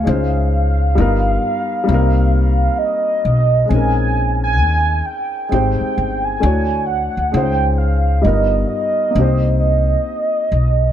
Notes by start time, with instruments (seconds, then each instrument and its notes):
Already playing: soft synth lead F5
0.04 upright bass C#2, upright piano G#3 C#4 D#4 F4
0.09 upright piano C5
0.95 upright bass G1, upright piano G3 B3 D#4 F4
1.00 upright piano A#4
1.84 upright piano G3 A#3
1.89 upright bass C2, upright piano C4 D#4
1.94 upright piano A#4
2.78 soft synth lead D#5
3.25 upright bass B1
3.66 upright piano G#3 C4, soft synth lead G#5
3.70 upright bass A#1, upright piano C#4 D#4
3.76 upright piano A#4
4.44 soft synth lead G#5
4.61 upright bass D#2
5.06 soft synth lead G5
5.49 upright bass G#1, upright piano G#3 C4 D#4, soft synth lead G5
5.53 upright piano G4 C5
5.81 muted upright bass stroke
5.98 upright bass G1
6.25 soft synth lead G#5
6.40 upright bass D2, upright piano A3 D4 E4 F#4
6.45 upright piano C#5
6.86 soft synth lead F#5
7.17 upright bass D2
7.32 upright bass C#2, upright piano G#3 C#4 D#4, soft synth lead F#5
7.36 upright piano F4 C5
7.43 soft synth lead G5
7.78 soft synth lead F5
8.22 upright bass G1, upright piano G3 B3 D#4, soft synth lead D#5
8.26 upright piano F4 A#4
8.68 soft synth lead D#5
9.11 upright piano A#3 C4
9.15 upright bass C2, upright piano D4 G4
9.21 upright piano D#4 C5
9.59 soft synth lead D#5
10.52 upright bass B1